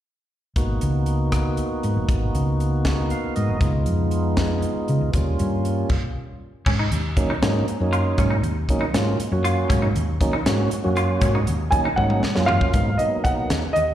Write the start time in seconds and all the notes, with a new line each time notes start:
0.56 G#1 A#3 B3 D#4 F#4, kick, closed hi-hat
0.81 C#2, closed hi-hat
1.06 closed hi-hat
1.32 kick, cross-stick, closed hi-hat
1.57 closed hi-hat
1.72 muted fingered electric bass stroke
1.83 G#2, closed hi-hat
1.96 F#1
2.08 G#1, kick, closed hi-hat
2.35 C#2, closed hi-hat
2.60 closed hi-hat
2.85 kick, snare, closed hi-hat
3.10 F5, closed hi-hat
3.24 muted fingered electric bass stroke
3.36 G#2 D#5, closed hi-hat
3.49 F#1
3.60 C#2 G#3 B3 D#4 F4, kick, closed hi-hat
3.86 F2, closed hi-hat
4.11 closed hi-hat
4.37 kick, snare, closed hi-hat
4.62 closed hi-hat
4.75 muted fingered electric bass stroke
4.88 C#3, closed hi-hat
5.01 C#2
5.13 D#2 G3 A#3 C#4 F4, kick, closed hi-hat
5.39 G2, closed hi-hat
5.65 closed hi-hat
5.89 kick, crash
6.66 G#2 C#4, kick, crash
6.79 D#4
6.92 D#2, closed hi-hat
7.17 F#3 A#3 C#4 D#4, kick, closed hi-hat
7.30 D#4
7.42 G#2 F#3 A#3 C#4 D#4, snare, closed hi-hat
7.67 muted fingered electric bass stroke, closed hi-hat
7.80 F#2 F#3 A#3 C#4 D#4
7.93 F4, closed hi-hat
8.18 G#2 C#4, kick, closed hi-hat
8.30 D#4
8.43 D#2, closed hi-hat
8.69 F#3 A#3 C#4 D#4, kick, closed hi-hat
8.81 D#4
8.94 G#2 F#3 A#3 C#4 F4, snare, closed hi-hat
9.20 muted fingered electric bass stroke, closed hi-hat
9.32 F#2 F#3 A#3 C#4 F#4
9.44 F4, closed hi-hat
9.70 G#2 C#4, kick, closed hi-hat
9.82 D#4
9.96 D#2, closed hi-hat
10.21 F#3 A#3 C#4 D#4, kick, closed hi-hat
10.33 D#4
10.46 G#2 F#3 A#3 C#4 F#4, snare, closed hi-hat
10.71 muted fingered electric bass stroke, closed hi-hat
10.84 F#2 F#3 A#3 C#4 F#4
10.96 F4, closed hi-hat
11.21 G#2 C#4, kick, closed hi-hat
11.35 D#4
11.47 D#2, closed hi-hat
11.71 F#3 A#3 C#4 D#4 G#5, kick, closed hi-hat
11.85 D#4
11.96 G#2 F#3 A#3 C#4 D#4 F#5, kick
12.10 high tom
12.23 muted fingered electric bass stroke, snare
12.35 F#2 F#3 A#3 C#4 F4, snare
12.46 F4 F5, floor tom
12.61 kick
12.73 G#2 F#3 A#3 B3 D#4, kick, closed hi-hat
12.98 F#3 A#3 B3 D#4 D#5, closed hi-hat
13.24 F#5, kick, closed hi-hat
13.39 muted fingered electric bass stroke
13.50 D#2, snare, closed hi-hat
13.73 D#2 D#5, closed hi-hat